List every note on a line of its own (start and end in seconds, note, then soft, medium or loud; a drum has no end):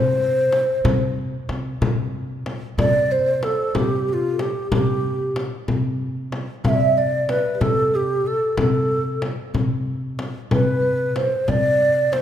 0.00 0.61 C3 medium
0.00 1.12 C5 loud
0.00 0.10 C5 medium
0.11 0.16 C5 medium
0.18 0.25 C5 medium
0.33 0.39 C5 medium
0.40 0.47 C5 soft
0.53 0.63 C5 soft
0.53 frame drum medium
0.64 0.70 C5 soft
0.71 0.77 C5 soft
0.78 0.85 C5 medium
0.84 1.34 C3 medium
0.84 0.93 C5 soft
0.84 frame drum loud
0.94 1.00 C5 medium
1.02 1.08 C5 medium
1.49 1.73 C3 medium
1.49 frame drum medium
1.81 2.55 C3 medium
1.81 frame drum medium
2.46 frame drum medium
2.78 3.51 C3 medium
2.78 3.12 D5 medium
2.78 3.13 D5 loud
2.78 frame drum medium
3.11 3.18 C5 medium
3.11 3.45 C5 medium
3.19 3.25 D5 medium
3.26 3.77 C5 medium
3.43 3.77 A4 medium
3.43 frame drum medium
3.70 3.76 A4 medium
3.75 4.48 C3 medium
3.75 4.35 G4 medium
3.75 4.08 G4 medium
3.75 frame drum medium
4.08 4.14 G4 medium
4.13 4.42 F4 medium
4.33 4.40 A4 medium
4.39 4.71 G4 medium
4.39 frame drum medium
4.72 5.45 C3 medium
4.72 5.40 G4 medium
4.72 frame drum medium
5.36 frame drum medium
5.68 6.42 C3 medium
5.68 frame drum medium
6.32 frame drum medium
6.64 7.38 C3 medium
6.64 6.73 E5 medium
6.64 6.70 F5 medium
6.64 frame drum medium
6.69 6.79 D5 medium
6.69 6.99 E5 loud
6.80 6.98 E5 medium
6.98 7.31 D5 loud
6.98 7.57 D5 medium
7.29 7.55 B4 medium
7.29 frame drum medium
7.55 7.62 G4 medium
7.55 7.64 B4 medium
7.61 8.34 C3 medium
7.61 7.94 A4 medium
7.61 7.97 A4 medium
7.61 frame drum medium
7.94 8.27 G4 medium
7.94 8.28 G4 medium
8.27 8.59 A4 medium
8.27 8.58 A4 medium
8.57 9.31 C3 medium
8.57 9.27 A4 medium
8.57 frame drum medium
9.22 frame drum medium
9.54 10.28 C3 medium
9.54 frame drum medium
10.19 frame drum medium
10.51 11.25 C3 medium
10.51 10.58 B4 medium
10.51 11.18 B4 medium
10.51 frame drum medium
10.59 10.67 B4 soft
10.75 10.81 B4 medium
10.82 10.89 B4 medium
10.90 10.96 B4 medium
10.98 11.04 B4 medium
11.06 11.09 B4 soft
11.11 11.17 B4 medium
11.16 11.51 C5 medium
11.16 11.50 C5 medium
11.16 frame drum medium
11.48 12.22 C3 medium
11.48 12.05 D5 medium
11.48 12.14 D5 loud
11.48 frame drum medium
12.07 12.13 D5 medium
12.12 12.22 C5 medium
12.12 frame drum medium